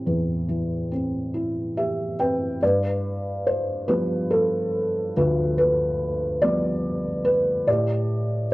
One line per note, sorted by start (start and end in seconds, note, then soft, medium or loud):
0.00 0.91 C4 soft
0.00 0.46 E4 soft
0.00 0.88 G4 soft
0.06 2.58 E2 medium
0.48 2.15 E3 soft
0.91 2.18 C4 soft
1.34 2.58 E4 soft
1.77 2.60 G4 soft
1.77 2.17 E5 medium
2.20 2.61 C4 soft
2.20 2.63 B4 medium
2.20 2.59 G5 soft
2.62 5.13 G2 medium
2.62 3.86 B4 medium
2.62 3.43 D5 medium
3.47 3.86 C5 medium
3.88 6.38 F3 soft
3.88 6.38 G3 soft
3.88 6.38 B3 soft
3.88 4.28 B4 medium
4.31 5.18 A4 medium
5.17 7.64 D2 medium
5.17 6.39 F4 soft
5.17 5.57 B4 medium
5.58 6.45 B4 medium
6.42 7.64 F3 soft
6.42 7.64 G3 soft
6.42 7.65 B3 soft
6.42 7.28 D5 medium
7.25 7.68 B4 medium
7.67 8.54 A2 medium
7.67 8.54 G4 medium
7.67 8.47 D5 medium